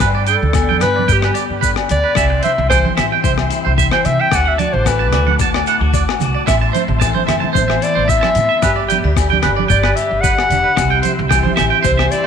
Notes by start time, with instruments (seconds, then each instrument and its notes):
0.00 upright bass G2, clean electric guitar G2, tonewheel organ D5 G5 B5, muted clean electric guitar stroke, kick, cross-stick, low agogo, maracas
0.15 clean electric guitar D5
0.27 clean electric guitar D4 G5, clarinet A4, closed hi-hat, maracas
0.42 upright bass D2, low conga
0.53 clean electric guitar D3 B3, kick, cross-stick, low agogo, maracas
0.69 clean electric guitar G5, high conga
0.81 upright bass G2, clean electric guitar B4, clarinet B4, cross-stick, closed hi-hat, low conga, low agogo, maracas
0.96 clean electric guitar D5, high conga
1.08 upright bass G2, clean electric guitar G2 G5, kick, maracas
1.13 clarinet G4
1.22 clean electric guitar B4, cross-stick, low agogo
1.34 clean electric guitar G4 D5, closed hi-hat, maracas
1.50 upright bass G2
1.61 clean electric guitar D3 B4, kick, maracas
1.76 cross-stick, low agogo
1.89 upright bass D2, clean electric guitar D4, clarinet D5, closed hi-hat, low conga, maracas
2.04 clean electric guitar B4
2.15 upright bass C2, clean electric guitar C3 E4 E5, tonewheel organ E5 G5 C6, kick, cross-stick, low agogo, maracas
2.30 muted clean electric guitar stroke
2.43 clean electric guitar C4 C5, clarinet E5, closed hi-hat, high conga, maracas
2.58 upright bass C2, low conga
2.69 clean electric guitar E3 G3 G5, clarinet C5, kick, cross-stick, low agogo, maracas
2.85 clean electric guitar C5, high conga
2.96 upright bass A1, clean electric guitar C4 E5, cross-stick, closed hi-hat, low conga, low agogo, maracas
3.12 clean electric guitar G5
3.23 upright bass C2, clean electric guitar G2 C5, kick, maracas
3.38 cross-stick, low agogo
3.50 clean electric guitar E4, closed hi-hat, maracas
3.65 upright bass C2, clean electric guitar C5
3.77 clean electric guitar E3 E5, kick, maracas
3.91 clarinet C5, clean electric guitar G5, cross-stick, low agogo
4.05 upright bass C3, clean electric guitar C4, clarinet E5, closed hi-hat, low conga, maracas
4.20 clean electric guitar E5, clarinet G5
4.31 upright bass D2, clean electric guitar D3 F#4 D5, tonewheel organ D6, kick, cross-stick, low agogo, maracas
4.36 clarinet F#5
4.46 clarinet E5, clean electric guitar F#5
4.58 clean electric guitar F#4 A5, clarinet D5, closed hi-hat, high conga, maracas
4.73 upright bass A1, clarinet C5, low conga
4.86 clean electric guitar A3 D4, clarinet B4, kick, cross-stick, low agogo, maracas
4.99 clean electric guitar A5
5.12 upright bass D2, clean electric guitar F#4 D5, cross-stick, closed hi-hat, low conga, low agogo
5.27 clean electric guitar F#5, high conga
5.39 upright bass D2, clean electric guitar A2 A5, kick, maracas
5.54 clean electric guitar D5, cross-stick, low agogo
5.67 clean electric guitar E4 F#5, closed hi-hat, maracas
5.80 upright bass D2, clean electric guitar F#4
5.94 clean electric guitar D5, kick, maracas
6.09 cross-stick, low agogo
6.20 upright bass C2, clean electric guitar F#4, closed hi-hat, low conga, maracas
6.34 clean electric guitar D5
6.46 upright bass A1, clean electric guitar A2 E4 E5, tonewheel organ E5 A5 C6, kick, cross-stick, low agogo, maracas
6.61 clean electric guitar A5
6.73 clean electric guitar C4 C5, closed hi-hat, high conga, maracas
6.88 upright bass A1, low conga
7.00 clean electric guitar E3 A3 A5, kick, cross-stick, low agogo, maracas
7.15 clean electric guitar C5, high conga
7.27 upright bass F#1, clean electric guitar C4 E5, cross-stick, closed hi-hat, low conga, low agogo, maracas
7.40 clean electric guitar A5, high conga
7.53 upright bass A1, clean electric guitar E2 C5, kick, maracas
7.57 clarinet C5, high conga
7.68 clean electric guitar E5, cross-stick, low agogo
7.82 clean electric guitar E4, clarinet D5, closed hi-hat, maracas
7.95 upright bass A1, clean electric guitar C5
8.08 clean electric guitar E3 E5, clarinet E5, kick, maracas
8.21 clean electric guitar A5, cross-stick, high conga, low agogo
8.35 upright bass A2, clean electric guitar C4, closed hi-hat, low conga, maracas
8.49 clean electric guitar E5
8.62 upright bass G1, clean electric guitar G2 G4 B4, tonewheel organ G4 D5 B5, kick, cross-stick, low agogo, maracas
8.76 clean electric guitar D5
8.88 clean electric guitar B3 G5, closed hi-hat, high conga, maracas
9.04 upright bass D2, clean electric guitar D4, low conga
9.16 clean electric guitar D3, muted clean electric guitar stroke, kick, cross-stick, low agogo, maracas
9.30 clean electric guitar G5, high conga
9.42 upright bass G1, clean electric guitar D4 B4, cross-stick, closed hi-hat, low conga, low agogo
9.56 clean electric guitar D5, high conga
9.68 upright bass G1, clarinet D5, clean electric guitar G5, kick, maracas
9.73 clean electric guitar G2
9.83 clean electric guitar B4, cross-stick, low agogo
9.96 clarinet E5, muted clean electric guitar stroke, closed hi-hat, maracas
10.00 clean electric guitar G4
10.11 upright bass G1
10.21 clean electric guitar D3 B4, clarinet F#5, kick, maracas
10.38 cross-stick, low agogo
10.50 upright bass E1, clean electric guitar D4, closed hi-hat, low conga, maracas
10.64 clean electric guitar B4
10.77 upright bass C2, clean electric guitar C3 E4, tonewheel organ E5 C6, muted clean electric guitar stroke, kick, cross-stick, low agogo, maracas
10.90 clean electric guitar G5
11.02 clean electric guitar C4 C5, closed hi-hat, high conga, maracas
11.19 upright bass C2, low conga
11.29 clean electric guitar E3 G3 G5, kick, cross-stick, low agogo, maracas
11.43 clean electric guitar C5, high conga
11.56 upright bass A1, clean electric guitar E5, cross-stick, closed hi-hat, low agogo, maracas
11.60 clean electric guitar C4, low conga
11.70 clean electric guitar G5
11.82 upright bass C2, clean electric guitar G2 C5, clarinet C5, kick, maracas
11.97 clean electric guitar E5, cross-stick, low agogo
12.11 clean electric guitar E4, clarinet D5, closed hi-hat, maracas
12.24 clean electric guitar C5